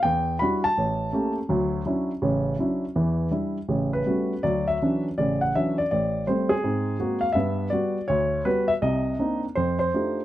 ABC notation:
X:1
M:4/4
L:1/8
Q:"Swing" 1/4=164
K:D
V:1 name="Grand piano"
g2 b a4 z | z8 | z4 z B3 | d e2 z d f e d |
d2 =c ^G4 =f | e2 d2 c2 B e | _e3 z =c c3 |]
V:2 name="Grand piano"
E,,2 [G,DEF] z A,,,2 [A,_B,CG] z | [D,,F,]2 [F,CDE] z [A,,,C,]2 [F,CDE] z | [E,,E,]2 [G,DE] z [A,,,C,]2 [G,A,B,CF] z | [D,,F,]2 [E,F,CD] z [A,,,C,]2 [E,F,CD] z |
A,,,2 [G,A,=C] z [^G,,^B,]2 [^G,^A,B,F] z | [G,,B,]2 [G,B,F] z D,,2 [G,B,F] z | [=C,,=C,]2 [_B,=CD_E] z =F,,2 [A,DE=FG] z |]